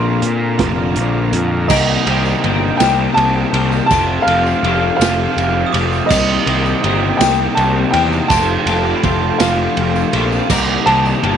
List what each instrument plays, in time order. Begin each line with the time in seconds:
Already playing: picked electric bass A#1, overdriven electric guitar A#2 D3 A#3 D4 F4, clean electric guitar C4, transistor combo organ D4 A#4 F5 A#5, upright piano C6
0.22 picked electric bass A#2, closed hi-hat
0.58 picked electric bass F1, overdriven electric guitar A#2 D3 A#3 D4 F4, kick, snare, closed hi-hat
0.96 picked electric bass A#1, closed hi-hat
1.32 picked electric bass F2, closed hi-hat
1.68 picked electric bass C2, overdriven electric guitar C3 D#3 G3 C4 G4, clean electric guitar A#3, transistor combo organ C4 A#4 D#5 G5, upright piano D#5, glockenspiel A#5, kick, crash, tambourine
2.06 picked electric bass C2, overdriven electric guitar C3 D#3 G3 C4 G4, clean electric guitar A#3, ride
2.25 tambourine
2.43 picked electric bass G1, overdriven electric guitar C3 D#3 G3 C4 G4, clean electric guitar A#3, ride
2.77 picked electric bass C2, overdriven electric guitar C3, clean electric guitar A#3, upright piano G5, snare, ride, tambourine
2.81 overdriven electric guitar D#3 G3 C4 G4
3.14 picked electric bass C2, upright piano A5, ride, tambourine
3.53 picked electric bass C2, overdriven electric guitar C3 D#3 G3 C4 G4, clean electric guitar A#3, ride
3.72 tambourine
3.86 upright piano A5
3.91 picked electric bass F1, overdriven electric guitar F2 C3 F3 A3 C4 F4, clean electric guitar G4, transistor combo organ G4 A4 F5, glockenspiel C6, kick, ride, tambourine
4.22 upright piano F5
4.27 picked electric bass F1, overdriven electric guitar F2 C3 F3 A3 C4 F4, clean electric guitar G4, ride
4.46 tambourine
4.63 picked electric bass F1, overdriven electric guitar F2 C3 F3 A3 C4 F4, clean electric guitar G4, ride
4.96 picked electric bass F1, upright piano F5
5.01 overdriven electric guitar F2 C3 F3 A3 C4 F4, clean electric guitar G4, snare, ride, tambourine
5.37 picked electric bass F1, ride, tambourine
5.66 glockenspiel D#6
5.73 picked electric bass F1, overdriven electric guitar F2 C3 F3 A3 C4 F4, clean electric guitar G4, glockenspiel D6, ride
5.93 tambourine
6.06 overdriven electric guitar C3, transistor combo organ A#4 D#5, upright piano D#5, glockenspiel D#6
6.10 picked electric bass C2, overdriven electric guitar D#3 G3 C4 G4, clean electric guitar A#3, kick, tambourine, crash
6.46 picked electric bass C2, overdriven electric guitar C3 D#3 G3 C4 G4, clean electric guitar A#3, ride
6.66 tambourine
6.84 picked electric bass G1, overdriven electric guitar C3 D#3 G3 C4 G4, clean electric guitar A#3, ride
7.17 picked electric bass C2, overdriven electric guitar C3 D#3, clean electric guitar A#3, upright piano G5, snare, ride, tambourine
7.21 overdriven electric guitar G3 C4 G4
7.55 picked electric bass C2, upright piano A5, ride, tambourine
7.91 picked electric bass E2, overdriven electric guitar C3, upright piano G5, ride
7.95 overdriven electric guitar D#3 G3 C4 G4, clean electric guitar A#3
8.12 tambourine
8.28 picked electric bass F1, overdriven electric guitar F2 C3 F3 A3 C4 F4, transistor combo organ A3 F4 C5, clean electric guitar G4, upright piano A5, glockenspiel C6, kick, ride, tambourine
8.66 picked electric bass F1, overdriven electric guitar F2 C3 F3 A3 C4 F4, clean electric guitar G4, ride, tambourine
8.96 glockenspiel B5
9.02 picked electric bass F1, overdriven electric guitar F2 C3 F3 A3 C4 F4, clean electric guitar G4, glockenspiel C6, kick, ride, tambourine
9.38 picked electric bass F1, overdriven electric guitar F2 C3 F3 A3 C4 F4, clean electric guitar G4, upright piano F5, snare, ride, tambourine
9.77 picked electric bass F1, ride
9.96 tambourine
10.13 picked electric bass A#1, overdriven electric guitar F2 C3 F3 A3 C4 F4, clean electric guitar G4, ride
10.32 tambourine
10.49 picked electric bass C2, overdriven electric guitar C3 D#3 G3 C4 G4, clean electric guitar A#3, transistor combo organ A#3 D#4, glockenspiel D6, kick, crash, tambourine
10.86 picked electric bass C2, overdriven electric guitar C3 D#3 G3 C4 G4, clean electric guitar A#3, upright piano A5, ride
11.05 tambourine
11.22 picked electric bass G1, overdriven electric guitar C3 D#3 G3 C4 G4, clean electric guitar A#3, ride